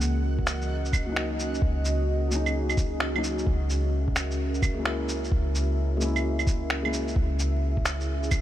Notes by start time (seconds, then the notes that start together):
Already playing: C#2 C#4 F#4 A#4 D#5
0.01 shaker
0.39 kick
0.47 finger snap, shaker
0.62 shaker
0.85 shaker
0.93 kick, claves, shaker
1.04 F#3 A#3
1.09 C#4 D#4
1.16 finger snap
1.40 shaker
1.54 shaker
1.62 C#2 G#4, kick
1.85 shaker
2.28 F#3 A#3, shaker
2.33 C#4 D#4
2.46 claves, shaker
2.69 claves, shaker
2.77 kick, shaker
3.00 finger snap
3.14 F#3 A#3 C#4 D#4, claves
3.24 shaker
3.39 shaker
3.47 C#2 A#4 E5, kick
3.70 shaker
4.08 kick
4.16 finger snap, shaker
4.31 shaker
4.54 shaker
4.62 kick, claves, shaker
4.74 G#3 A#3
4.80 C#4 E4
4.85 finger snap
5.09 shaker
5.24 shaker
5.32 C#2, kick
5.55 shaker
5.97 G#3 A#3, shaker
6.02 C#4 E4
6.16 claves, shaker
6.39 claves, shaker
6.47 kick, shaker
6.70 finger snap
6.83 G#3 A#3 C#4 E4, claves
6.93 shaker
7.08 shaker
7.15 C#2 C#4 E4 G#4 D#6, kick
7.39 cabasa, shaker
7.77 kick
7.85 finger snap, cabasa, shaker
8.00 shaker
8.23 shaker
8.31 kick, cabasa, claves, shaker